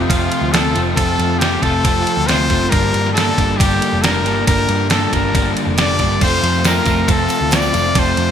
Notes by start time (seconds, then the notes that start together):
Already playing: F4 C5 F5 C6
0.02 D#4 D#6
0.08 F1 F2 C3 F3 A3 C4 F4 F6, kick, ride
0.32 ride
0.41 D2
0.52 F2 C3 F3 A3 C4 F4 A4 A6, snare, ride
0.73 F1 F2 C3 F3 A3 C4 F4, ride
0.95 F1 F2 C3 F3 A3 C4 F4 A4 A6, kick, ride
1.19 F2, ride
1.39 F2 C3 F3 A3 C4 F4 G4 G6, snare, ride
1.62 F1 F2 C3 F3 A3 C4 F4 A4 A6, kick, ride
1.84 F1 F2 C3 F3 A3 C4 F4, kick, ride
2.07 ride
2.17 D2
2.26 F2 C3 F3 A3 C4 F4 C5 C7, snare, ride
2.49 F#1 F2 C3 F3 A3 C4 F4, kick, ride
2.70 G1 G2 D3 G3 A#3 D4 A4 A#4 D5 G5 A#6, kick, ride
2.94 G2, ride
3.06 snare
3.13 G2 D3 G3 A#3 D4 A4 A6, ride
3.17 A4, snare
3.36 G1 G2 D3 G3 A#3 D4 A4, kick, ride
3.57 G1 G2 D3 G3 A#3 D4 G4 G6, kick, ride
3.61 A4
3.82 ride
3.93 F1
4.02 G2 D3 G3 A#3 D4 A4 A#4 A#6, snare, ride
4.25 G1 G2 D3 G3 A#3 D4 A4, ride
4.46 G1 G2 D3 G3 A#3 D4 A4 A#4 A#6, kick, ride
4.69 G2, ride
4.89 G2 D3 G3 A#3 D4 A4 A6, snare, ride
5.12 G1 G2 D3 G3 A#3 D4 A4 A#4 A#6, kick, ride
5.33 G1 G2 D3 G3 A#3 D4 A4, kick, ride
5.57 ride
5.67 F1
5.76 G2 D3 G3 A#3 D4 A4 D5 D7, snare, ride
5.99 G1 G2 D3 G3 A#3 D4 A4, kick, ride
6.21 F1 F2 C3 F3 A3 C4 F4 A4 C5 F5 C6 C7, kick, crash
6.33 tambourine
6.43 F2, ride
6.54 tambourine
6.64 F2 C3 F3 A3 C4 F4 A4 A#4 A#6, snare, ride, tambourine
6.85 F1 F2 C3 F3 A3 C4 F4 A4, kick, ride, tambourine
6.97 tambourine
7.07 F1 F2 C3 F3 A3 C4 F4 A4, kick, ride
7.11 A4 A6
7.29 ride, tambourine
7.41 D2
7.50 F2 C3 F3 A3 C4 F4 A4, snare, ride, tambourine
7.55 D5 D7
7.62 tambourine
7.73 F1 F2 C3 F3 A3 C4 F4 A4, ride, tambourine
7.94 F1 F2 C3 F3 A3 C4 F4 A4 C7, kick, ride
7.99 C5
8.07 tambourine
8.17 F2, ride